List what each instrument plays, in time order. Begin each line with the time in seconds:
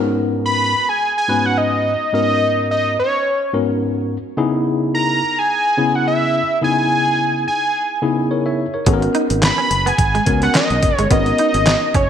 Already playing: tine electric piano G#2 B3 C#4 F#4 A#4
0.46 analog synth lead B5
0.89 analog synth lead G#5
1.18 analog synth lead G#5
1.28 tine electric piano G#2 B3 C#4 F#4 B4
1.46 analog synth lead F#5
1.58 analog synth lead D#5
2.13 tine electric piano G#2 B3 C#4 F#4 A#4, analog synth lead D#5
2.71 analog synth lead D#5
2.99 analog synth lead C#5
3.53 tine electric piano G#2 B3 C#4 F#4 A#4
4.37 tine electric piano C#3 B3 D#4 E4 G#4
4.95 analog synth lead A#5
5.39 analog synth lead G#5
5.77 tine electric piano C#3 B3 C#4 E4 G#4
5.95 analog synth lead F#5
6.08 analog synth lead E5
6.62 tine electric piano C#3 B3 D#4 E4 G#4, analog synth lead G#5
7.48 analog synth lead G#5
8.02 tine electric piano C#3 B3 D#4 E4 G#4
8.31 tine electric piano A#4 C#5
8.46 tine electric piano C#5 E5
8.74 tine electric piano A#4 C#5
8.86 fretless electric bass G#1, clean electric guitar G#3, tine electric piano B3 C#4 F#4 A4, kick, closed hi-hat
8.94 tine electric piano A#4
9.02 muted clean electric guitar stroke, closed hi-hat
9.15 clean electric guitar D#4, closed hi-hat
9.30 fretless electric bass G#1, closed hi-hat
9.42 analog synth lead B5, snare, clap, closed hi-hat
9.58 clean electric guitar C#4
9.71 fretless electric bass F#1, muted clean electric guitar stroke, closed hi-hat
9.86 clean electric guitar B3, analog synth lead G#5, closed hi-hat
9.98 fretless electric bass G#1, kick, closed hi-hat
10.15 clean electric guitar G#3, closed hi-hat
10.26 fretless electric bass C#2, tine electric piano B3 C#4 F#4 A#4, muted clean electric guitar stroke, kick, closed hi-hat
10.42 clean electric guitar B3, analog synth lead F#5, closed hi-hat
10.55 clean electric guitar C#4, analog synth lead D#5, snare, clap, closed hi-hat
10.70 fretless electric bass B1, muted clean electric guitar stroke, closed hi-hat
10.83 fretless electric bass F#1, kick, closed hi-hat
10.96 fretless electric bass G1, clean electric guitar G#3, analog synth lead C#5, closed hi-hat
11.10 fretless electric bass G#1, tine electric piano B3 C#4 F#4 A#4, clean electric guitar B3, analog synth lead D#5, kick, closed hi-hat
11.26 closed hi-hat
11.38 clean electric guitar D#4, closed hi-hat
11.54 fretless electric bass G#1, muted clean electric guitar stroke, closed hi-hat
11.66 muted clean electric guitar stroke, snare, clap, closed hi-hat
11.94 fretless electric bass F#1, clean electric guitar C#4, analog synth lead C#5, kick, closed hi-hat